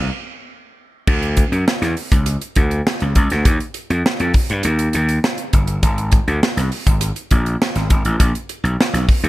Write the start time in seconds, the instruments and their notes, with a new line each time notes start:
1.07 slap bass D2, kick, crash
1.22 closed hi-hat
1.37 kick, closed hi-hat
1.52 slap bass F#2, closed hi-hat
1.68 snare
1.82 slap bass E2, snare, closed hi-hat
1.97 open hi-hat
2.12 slap bass C#2, kick, closed hi-hat
2.26 closed hi-hat
2.42 closed hi-hat
2.55 slap bass D2, kick, closed hi-hat
2.71 closed hi-hat
2.87 snare
3.00 slap bass C#2, closed hi-hat
3.15 slap bass C#2, kick, closed hi-hat
3.30 slap bass D2, snare, closed hi-hat
3.45 slap bass D#2, kick, closed hi-hat
3.60 closed hi-hat
3.74 closed hi-hat
3.90 slap bass F2, closed hi-hat
4.06 snare
4.20 slap bass F2, closed hi-hat
4.34 kick, open hi-hat
4.50 slap bass G2, closed hi-hat
4.63 slap bass D#2, closed hi-hat
4.79 closed hi-hat
4.93 slap bass D#2, closed hi-hat
5.09 closed hi-hat
5.24 snare
5.38 closed hi-hat
5.53 slap bass G1, kick, closed hi-hat
5.67 closed hi-hat
5.83 slap bass G#1, kick, closed hi-hat
5.98 closed hi-hat
6.12 kick, closed hi-hat
6.27 slap bass D2, closed hi-hat
6.43 snare
6.57 slap bass C2, snare, closed hi-hat
6.72 open hi-hat
6.87 slap bass G#1, kick, closed hi-hat
7.01 closed hi-hat
7.16 closed hi-hat
7.31 slap bass A#1, kick, closed hi-hat
7.46 closed hi-hat
7.62 snare
7.75 slap bass G#1, snare, closed hi-hat
7.90 slap bass G#1, kick, closed hi-hat
8.05 slap bass A1, closed hi-hat
8.20 slap bass A#1, kick, closed hi-hat
8.35 closed hi-hat
8.49 closed hi-hat
8.64 slap bass B1, closed hi-hat
8.81 snare
8.93 slap bass B1, snare, closed hi-hat
9.09 kick, open hi-hat
9.23 slap bass D#2, closed hi-hat